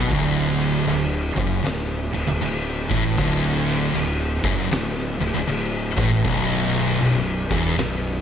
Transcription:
Already playing: fingered electric bass B1, distorted electric guitar B2
0.10 fingered electric bass D1, distorted electric guitar D2, kick, crash
0.60 crash
0.87 fingered electric bass D1, distorted electric guitar D2, crash
1.36 fingered electric bass F#1, distorted electric guitar F#2, kick, crash
1.65 fingered electric bass D1, distorted electric guitar D2, snare, crash
2.14 fingered electric bass D1, distorted electric guitar D2, crash
2.27 fingered electric bass D1, distorted electric guitar D2
2.41 fingered electric bass D1, distorted electric guitar D2, crash
2.89 fingered electric bass A1, distorted electric guitar A2, kick, crash
3.18 fingered electric bass D1, distorted electric guitar D2, kick, crash
3.68 crash
3.94 fingered electric bass D1, distorted electric guitar D2, crash
4.44 fingered electric bass F#1, distorted electric guitar F#2, kick, crash
4.71 fingered electric bass D1, distorted electric guitar D2, snare, crash
4.98 snare
5.20 fingered electric bass D1, distorted electric guitar D2, crash
5.34 fingered electric bass D1, distorted electric guitar D2
5.48 fingered electric bass D1, distorted electric guitar D2, crash
5.96 fingered electric bass A1, distorted electric guitar A2, kick, crash
6.24 fingered electric bass B0, distorted electric guitar B1, kick, crash
6.75 crash
7.01 fingered electric bass B0, distorted electric guitar B1, crash
7.51 fingered electric bass E1, distorted electric guitar E2, kick, crash
7.77 fingered electric bass B0, distorted electric guitar B1, snare, crash

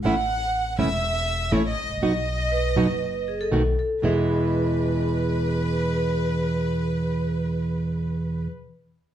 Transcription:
0.04 upright bass A1, nylon-string guitar E3 A3 C#4 E4, violin section F#5
0.78 upright bass E1, nylon-string guitar E3 A3 C#4 E4, violin section E5
1.51 upright bass A1, nylon-string guitar E3 A3 C#4 E4, violin section C#5
1.67 violin section D#5
1.84 upright bass G#1
1.90 upright bass A1
1.96 upright bass A#1
2.02 upright bass B1, nylon-string guitar B2 F#3 B3 D#4 F#4, violin section D#5
2.52 vibraphone B4
2.76 upright bass F#1, nylon-string guitar B2 F#3 B3 D#4 F#4
3.28 vibraphone G#4
3.41 vibraphone A4
3.52 upright bass B1, nylon-string guitar B2 D#3 A3 B3 F#4
3.79 vibraphone A4
4.02 nylon-string guitar E2 B2 E3 G#3 B3 E4, upright bass E2, vibraphone G#4, violin section B4

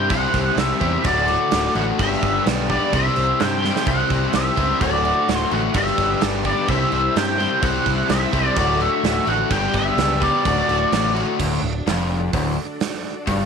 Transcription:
Already playing: fingered electric bass G2, string machine E4, overdriven electric guitar E4 G4 C5
0.09 fingered electric bass C2, overdriven electric guitar C3 G3 C4 E4 G4 C5, string machine E4 G4 C5 E5, lead electric guitar F#5, kick, crash
0.34 fingered electric bass C2, overdriven electric guitar E4, kick, crash
0.56 fingered electric bass C2, overdriven electric guitar G4, lead electric guitar E5, snare, crash
0.80 fingered electric bass E2, overdriven electric guitar C3 G3 C4 E4 G4 C5, kick, crash
1.04 fingered electric bass D1, overdriven electric guitar D2 A2 D3 A3 F#4, string machine D4 F#4 A4 D5, lead electric guitar D5, kick, crash
1.28 overdriven electric guitar F#4, crash
1.51 fingered electric bass D1, overdriven electric guitar A3, snare, crash
1.75 fingered electric bass A1, overdriven electric guitar D2 A2 D3 A3 F#4, lead electric guitar F#5, crash
1.99 fingered electric bass G1, overdriven electric guitar G2 D3 G3 B3 D4 G4, string machine D4 G4 B4 D5, lead electric guitar E5, kick, crash
2.13 snare
2.23 fingered electric bass G1, overdriven electric guitar B3, kick, crash
2.46 fingered electric bass B1, overdriven electric guitar D4, snare, crash
2.69 overdriven electric guitar D3 G3 B3 D4 G4, lead electric guitar D5, kick, crash
2.73 overdriven electric guitar G2
2.92 fingered electric bass C2, overdriven electric guitar C3 G3 C4 E4 G4 C5, string machine E4 G4 C5 E5, lead electric guitar E5, kick, crash
3.16 fingered electric bass C2, overdriven electric guitar C5, crash
3.40 fingered electric bass G2, overdriven electric guitar G4, lead electric guitar G5, snare, crash
3.62 overdriven electric guitar C3 G3 C4 E4 G4 C5, snare
3.76 snare
3.86 fingered electric bass C2, overdriven electric guitar C3 G3 C4 E4 G4 C5, string machine E4 G4 C5 E5, lead electric guitar F#5, kick, crash
4.10 fingered electric bass C2, overdriven electric guitar E4, kick, crash
4.33 fingered electric bass C2, overdriven electric guitar G4, lead electric guitar E5, snare, crash
4.56 fingered electric bass C#2, overdriven electric guitar C3 G3 C4 E4 G4 C5, kick, crash
4.79 fingered electric bass D1, overdriven electric guitar D2 A2 D3 A3 F#4, string machine D4 F#4 A4, lead electric guitar D5, kick, crash
4.84 string machine D5
5.05 overdriven electric guitar F#4, crash
5.29 fingered electric bass D1, overdriven electric guitar A3, snare, crash
5.36 lead electric guitar C5
5.51 fingered electric bass A1, overdriven electric guitar D2 A2 D3 A3 F#4, lead electric guitar F#5, crash
5.74 fingered electric bass G1, overdriven electric guitar G2 D3 G3 B3 D4 G4, string machine D4 G4 B4 D5, lead electric guitar E5, kick, crash
5.87 snare
5.98 fingered electric bass G1, overdriven electric guitar B3, kick, crash
6.21 fingered electric bass G1, overdriven electric guitar D4, snare, crash
6.44 overdriven electric guitar G2 D3 G3 B3 D4 G4, lead electric guitar D5, kick, crash
6.68 fingered electric bass C2, overdriven electric guitar C3 G3 C4 E4 G4 C5, string machine E4 G4 C5 E5, lead electric guitar E5, kick, crash
6.92 fingered electric bass C2, overdriven electric guitar C5, crash
7.15 fingered electric bass G2, overdriven electric guitar G4, lead electric guitar G5, snare, crash
7.38 overdriven electric guitar C3 G3 C4 E4 G4 C5, crash
7.60 fingered electric bass C2, overdriven electric guitar C3 G3 C4 E4 G4 C5, string machine E4 G4 C5 E5, lead electric guitar F#5, kick, crash
7.86 fingered electric bass C2, overdriven electric guitar E4, kick, crash
8.09 fingered electric bass C2, overdriven electric guitar G4, lead electric guitar E5, snare, crash
8.32 fingered electric bass C2, overdriven electric guitar C3 G3 C4 E4 G4 C5, kick, crash
8.55 fingered electric bass D1, overdriven electric guitar D2 A2 D3 A3 F#4, string machine D4 F#4 A4 D5, lead electric guitar D5, kick, crash
8.81 overdriven electric guitar F#4, lead electric guitar E5, crash
9.03 fingered electric bass D1, overdriven electric guitar A3, snare, crash
9.26 fingered electric bass A1, overdriven electric guitar D2 A2 D3 A3 F#4, lead electric guitar F#5, crash
9.49 fingered electric bass G1, overdriven electric guitar G2 D3 G3 B3 D4 G4, string machine D5, lead electric guitar G5, kick, crash
9.54 string machine D4 G4 B4
9.73 fingered electric bass G1, overdriven electric guitar B3, lead electric guitar E5, kick, crash
9.97 fingered electric bass C#2, overdriven electric guitar D4, snare, crash
10.20 overdriven electric guitar G2 D3 G3 B3 D4 G4, lead electric guitar D5, kick, crash
10.44 fingered electric bass D1, overdriven electric guitar D2 A2 D3 A3 F#4, string machine D4 F#4 A4 D5, kick, crash
10.69 fingered electric bass D1, overdriven electric guitar F#4, crash
10.92 fingered electric bass A1, overdriven electric guitar A3, snare, crash
11.14 overdriven electric guitar D2 A2 D3 A3 F#4, crash
11.39 fingered electric bass D1, overdriven electric guitar D2, string machine D4 F#4 A4 D5, kick, crash
11.62 fingered electric bass D1, overdriven electric guitar D2
11.86 fingered electric bass F1, overdriven electric guitar F2, snare, open hi-hat
12.33 fingered electric bass D1, overdriven electric guitar D2, kick, open hi-hat
12.80 snare, open hi-hat
13.27 fingered electric bass G1, overdriven electric guitar G2, kick, open hi-hat

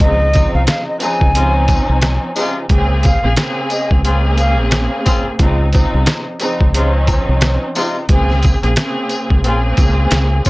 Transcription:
0.00 fingered electric bass C#2, string section C#3 F3 C4 D#4, flute D#5, kick, closed hi-hat
0.33 string section C#3 F3 C4 D#4, kick, closed hi-hat, tambourine
0.55 fingered electric bass C2, flute F5
0.67 flute F5, snare, closed hi-hat
0.88 flute D#5
1.00 string section C#3 F3 C4 D#4, flute G#5, closed hi-hat, tambourine
1.21 fingered electric bass C#2, kick
1.34 horn section C3 G#3 F4, string section F3 C4 C#4 D#4, closed hi-hat
1.68 kick, closed hi-hat, tambourine
1.89 fingered electric bass C2
2.02 snare, closed hi-hat
2.35 horn section C3 G#3 F4, string section C#3 F3 C4 D#4, closed hi-hat, tambourine
2.69 fingered electric bass C#2, string section C#3 A#3 C4 G#4, kick, closed hi-hat
3.03 flute F5, kick, closed hi-hat, tambourine
3.22 fingered electric bass A#1, string section C#3 A#3 C4 G#4
3.36 string section C#3 A#3 C4 G#4, snare, closed hi-hat
3.70 flute D#5, closed hi-hat, tambourine
3.91 fingered electric bass C#2, kick
4.04 string section C#3 A#3 C4 G#4, horn section C#3 C4 F4, closed hi-hat
4.38 flute F5, closed hi-hat, tambourine
4.59 fingered electric bass A#1
4.71 snare, closed hi-hat
5.05 horn section C#3 C4 F4, kick, closed hi-hat, tambourine
5.39 fingered electric bass C#2, string section C#3 F3 C4 D#4, kick, closed hi-hat
5.72 string section C#3 F3 C4 D#4, kick, closed hi-hat, tambourine
5.94 fingered electric bass C2
6.06 snare, closed hi-hat
6.40 string section C#3 F3 C4 D#4, closed hi-hat, tambourine
6.61 fingered electric bass C#2, kick
6.74 horn section C3 G#3 F4, string section F3 C4 C#4 D#4, closed hi-hat
7.07 kick, closed hi-hat, tambourine
7.29 fingered electric bass C2
7.41 snare, closed hi-hat
7.75 horn section C3 G#3 F4, string section C#3 F3 C4 D#4, closed hi-hat, tambourine
8.08 fingered electric bass C#2, string section C#3 A#3 C4 G#4, kick, closed hi-hat
8.30 snare
8.43 kick, closed hi-hat, tambourine
8.62 fingered electric bass A#1, string section C#3 A#3 C4 G#4, closed hi-hat
8.76 string section C#3 A#3 C4 G#4, snare, closed hi-hat
9.09 closed hi-hat, tambourine
9.30 fingered electric bass C#2, kick
9.44 fingered electric bass A#1, horn section C#3 C4 F4, string section C#3 A#3 C4 G#4, closed hi-hat
9.77 fingered electric bass C#2, kick, closed hi-hat, tambourine
10.11 fingered electric bass C#2, snare, closed hi-hat
10.45 fingered electric bass C2, horn section C4 C#4 F4, kick, closed hi-hat, tambourine

